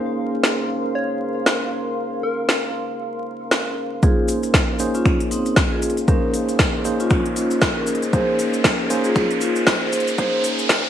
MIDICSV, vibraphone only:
0, 0, Header, 1, 2, 480
1, 0, Start_track
1, 0, Key_signature, -5, "minor"
1, 0, Tempo, 512821
1, 1851, Time_signature, 4, 2, 24, 8
1, 10197, End_track
2, 0, Start_track
2, 0, Title_t, "Vibraphone"
2, 0, Program_c, 0, 11
2, 3771, Note_on_c, 0, 68, 94
2, 3772, Note_on_c, 0, 65, 70
2, 3995, Note_off_c, 0, 65, 0
2, 3995, Note_off_c, 0, 68, 0
2, 4631, Note_on_c, 0, 61, 71
2, 4631, Note_on_c, 0, 65, 89
2, 4848, Note_off_c, 0, 61, 0
2, 4848, Note_off_c, 0, 65, 0
2, 4972, Note_on_c, 0, 60, 70
2, 4972, Note_on_c, 0, 63, 88
2, 5195, Note_off_c, 0, 60, 0
2, 5195, Note_off_c, 0, 63, 0
2, 5351, Note_on_c, 0, 65, 71
2, 5351, Note_on_c, 0, 68, 84
2, 5568, Note_off_c, 0, 65, 0
2, 5568, Note_off_c, 0, 68, 0
2, 5691, Note_on_c, 0, 61, 77
2, 5692, Note_on_c, 0, 70, 98
2, 5915, Note_off_c, 0, 61, 0
2, 5915, Note_off_c, 0, 70, 0
2, 6552, Note_on_c, 0, 61, 74
2, 6552, Note_on_c, 0, 65, 92
2, 6768, Note_off_c, 0, 61, 0
2, 6769, Note_off_c, 0, 65, 0
2, 6891, Note_on_c, 0, 61, 73
2, 6891, Note_on_c, 0, 65, 88
2, 7114, Note_off_c, 0, 65, 0
2, 7115, Note_off_c, 0, 61, 0
2, 7271, Note_on_c, 0, 61, 75
2, 7271, Note_on_c, 0, 70, 89
2, 7488, Note_off_c, 0, 61, 0
2, 7488, Note_off_c, 0, 70, 0
2, 7612, Note_on_c, 0, 68, 78
2, 7612, Note_on_c, 0, 72, 99
2, 7835, Note_off_c, 0, 68, 0
2, 7835, Note_off_c, 0, 72, 0
2, 8472, Note_on_c, 0, 65, 76
2, 8472, Note_on_c, 0, 68, 92
2, 8688, Note_off_c, 0, 65, 0
2, 8688, Note_off_c, 0, 68, 0
2, 8812, Note_on_c, 0, 61, 74
2, 8812, Note_on_c, 0, 65, 91
2, 9035, Note_off_c, 0, 61, 0
2, 9035, Note_off_c, 0, 65, 0
2, 9192, Note_on_c, 0, 68, 74
2, 9192, Note_on_c, 0, 72, 91
2, 9409, Note_off_c, 0, 68, 0
2, 9409, Note_off_c, 0, 72, 0
2, 9533, Note_on_c, 0, 68, 79
2, 9533, Note_on_c, 0, 72, 102
2, 9755, Note_off_c, 0, 72, 0
2, 9756, Note_off_c, 0, 68, 0
2, 10197, End_track
0, 0, End_of_file